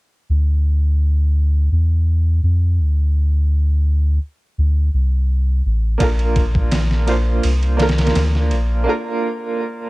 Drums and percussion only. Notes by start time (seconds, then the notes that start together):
6.00 kick, ride
6.19 ride
6.36 kick, ride
6.55 kick
6.72 snare, ride
6.91 snare
7.08 ride
7.43 ride
7.63 ride
7.79 snare, ride
7.89 snare, ride
7.98 snare, ride
8.07 snare, ride
8.15 snare, ride
8.35 snare
8.51 ride